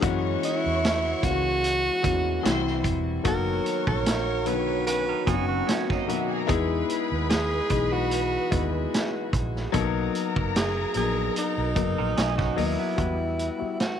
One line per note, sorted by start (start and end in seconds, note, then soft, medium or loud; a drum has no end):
0.01 0.35 F#2 medium
0.01 1.02 E3 loud
0.01 2.42 E3 medium
0.01 2.42 G#3 medium
0.01 1.03 G#3 medium
0.01 2.42 A#3 medium
0.01 1.03 A#3 medium
0.01 1.03 C#4 loud
0.01 2.42 F#4 medium
0.01 1.03 F#4 loud
0.01 2.01 C#5 medium
0.01 2.01 C#6 loud
0.01 kick loud
0.01 closed hi-hat medium
0.43 1.26 E4 loud
0.43 closed hi-hat medium
0.66 1.13 E2 medium
0.85 snare loud
0.85 closed hi-hat medium
1.22 1.88 C#2 medium
1.22 1.90 E3 medium
1.22 1.91 G#3 medium
1.22 1.90 A#3 medium
1.22 1.91 C#4 medium
1.22 1.31 F4 medium
1.22 2.86 F#4 loud
1.22 kick medium
1.22 closed hi-hat medium
1.30 1.94 F#4 medium
1.64 closed hi-hat medium
2.03 2.37 E2 medium
2.03 2.42 E3 medium
2.03 2.45 G#3 medium
2.03 2.45 A#3 medium
2.03 2.45 C#4 medium
2.03 2.45 F#4 medium
2.03 kick medium
2.03 closed hi-hat medium
2.43 2.86 C2 loud
2.43 3.25 C3 medium
2.43 3.11 E3 medium
2.43 3.11 G3 medium
2.43 3.25 G3 medium
2.43 3.12 C4 medium
2.43 3.25 E4 medium
2.43 3.12 E4 medium
2.43 2.84 C5 medium
2.43 2.84 C6 loud
2.43 snare loud
2.43 closed hi-hat medium
2.67 snare soft
2.84 3.17 E1 loud
2.84 kick medium
2.84 closed hi-hat medium
3.24 3.58 F#1 medium
3.24 4.25 D#3 medium
3.24 4.25 F#3 medium
3.24 12.93 F#3 medium
3.24 4.26 A#3 medium
3.24 4.26 B3 medium
3.24 6.45 F#4 medium
3.24 4.26 F#4 loud
3.24 5.66 C#5 loud
3.24 5.66 C#6 medium
3.24 kick loud
3.24 closed hi-hat medium
3.28 3.85 A#4 loud
3.66 closed hi-hat medium
3.87 4.47 A#1 medium
3.87 4.49 A#4 medium
3.87 kick loud
4.06 snare loud
4.06 closed hi-hat loud
4.45 5.12 B1 medium
4.45 4.53 D3 soft
4.45 5.13 F#3 medium
4.45 5.14 B3 medium
4.45 5.14 F#4 medium
4.45 4.86 B4 loud
4.45 closed hi-hat medium
4.51 5.16 D#3 medium
4.87 5.09 C#4 medium
4.87 5.08 F#4 medium
4.87 5.31 B4 loud
4.87 closed hi-hat medium
5.09 5.26 D#4 medium
5.09 5.26 A#4 medium
5.26 5.60 F#1 medium
5.26 5.94 D#3 medium
5.26 5.95 F#3 medium
5.26 5.95 A#3 medium
5.26 5.95 B3 medium
5.26 5.35 C4 medium
5.26 5.48 D#4 medium
5.26 6.10 F#4 medium
5.26 5.48 G#4 medium
5.26 kick medium
5.26 closed hi-hat medium
5.34 5.98 C#4 medium
5.49 5.65 C#4 medium
5.49 5.67 F#4 medium
5.67 5.89 G#3 medium
5.67 5.88 C#4 medium
5.67 snare loud
5.67 closed hi-hat medium
5.79 5.90 B3 medium
5.79 5.90 B4 medium
5.89 6.47 A#3 medium
5.89 5.99 C#4 medium
5.89 6.46 D#4 medium
5.89 5.99 C#5 medium
5.89 kick medium
5.89 snare soft
5.99 6.09 D#4 medium
5.99 6.09 D#5 medium
6.07 6.42 B2 medium
6.07 6.42 D#3 medium
6.07 6.42 F#3 medium
6.07 6.42 A#3 medium
6.07 6.20 E4 medium
6.07 6.43 F#4 medium
6.07 6.20 E5 medium
6.07 closed hi-hat medium
6.20 6.31 F#4 medium
6.20 6.31 F#5 medium
6.30 6.40 G#4 medium
6.30 6.40 G#5 medium
6.40 6.50 A#4 medium
6.40 6.49 A#5 medium
6.47 6.82 E2 medium
6.47 7.49 G#3 loud
6.47 9.70 G#3 medium
6.47 7.49 B3 loud
6.47 7.50 D#4 loud
6.47 7.49 E4 loud
6.47 7.50 G#4 loud
6.47 9.71 G#4 medium
6.47 9.29 B4 loud
6.47 9.29 B5 loud
6.47 kick loud
6.47 closed hi-hat medium
6.90 closed hi-hat medium
7.12 7.59 D#2 medium
7.30 7.94 G#4 loud
7.30 snare loud
7.30 closed hi-hat medium
7.70 8.36 B1 medium
7.70 8.38 E3 medium
7.70 8.38 G#3 medium
7.70 8.38 B3 medium
7.70 8.38 D#4 medium
7.70 8.39 G#4 medium
7.70 kick medium
7.70 closed hi-hat medium
7.93 8.74 F#4 loud
8.11 closed hi-hat medium
8.51 8.85 D#2 medium
8.51 9.52 G#3 medium
8.51 9.52 B3 medium
8.51 9.52 D#4 medium
8.51 9.52 E4 medium
8.51 9.53 B4 medium
8.51 kick medium
8.51 closed hi-hat medium
8.94 snare loud
8.94 closed hi-hat medium
9.33 9.66 A#1 medium
9.33 kick medium
9.33 closed hi-hat medium
9.56 snare soft
9.72 10.07 B1 medium
9.72 10.74 F#3 loud
9.72 10.74 A#3 loud
9.72 10.74 B3 loud
9.72 10.74 D#4 loud
9.72 12.95 F#4 medium
9.72 9.81 A4 medium
9.72 12.94 A#4 medium
9.72 12.54 A#4 loud
9.72 12.54 A#5 loud
9.72 kick loud
9.72 closed hi-hat medium
9.80 10.78 A#4 loud
10.15 closed hi-hat medium
10.36 10.84 F#1 medium
10.36 kick medium
10.56 10.93 G#4 loud
10.56 snare loud
10.56 closed hi-hat medium
10.94 11.28 A#1 medium
10.94 11.62 F#3 medium
10.94 11.62 A#3 medium
10.94 11.62 B3 medium
10.94 11.02 D4 medium
10.94 11.34 G#4 loud
10.94 11.63 A#4 medium
10.94 closed hi-hat medium
11.02 11.66 D#4 medium
11.36 12.55 D#4 medium
11.36 closed hi-hat medium
11.58 11.73 B1 loud
11.75 11.94 F#1 medium
11.75 12.43 F#3 medium
11.75 12.43 A#3 medium
11.75 12.43 B3 medium
11.75 12.44 D#4 medium
11.75 12.44 A#4 medium
11.75 kick medium
11.75 closed hi-hat medium
11.98 12.14 A#1 medium
11.98 12.16 D#4 medium
11.98 12.16 A#4 medium
12.17 12.50 B1 medium
12.17 12.38 D#4 medium
12.17 12.37 G#4 medium
12.17 snare loud
12.17 closed hi-hat medium
12.38 12.56 C#4 medium
12.38 12.56 F#4 medium
12.38 kick medium
12.38 snare soft
12.56 12.75 D#2 medium
12.56 12.91 F#3 medium
12.56 12.91 A#3 medium
12.56 12.78 A#3 medium
12.56 12.91 B3 medium
12.56 12.78 D#4 medium
12.56 13.76 E4 medium
12.56 12.91 A#4 medium
12.56 12.91 D#5 medium
12.56 open hi-hat medium
12.79 13.18 F#3 soft
12.79 13.18 B3 medium
12.96 13.48 E2 medium
12.96 13.47 G3 medium
12.96 13.48 B3 medium
12.96 13.48 E4 medium
12.96 13.48 F#4 medium
12.96 13.48 B4 medium
12.96 kick loud
12.96 closed hi-hat medium
13.39 closed hi-hat medium
13.58 14.00 G3 medium
13.58 14.00 B3 medium
13.58 14.00 E4 medium
13.58 14.00 F#4 medium
13.58 14.00 B4 medium
13.58 muted fingered electric bass stroke soft
13.80 14.00 F#4 medium
13.80 snare loud
13.80 closed hi-hat medium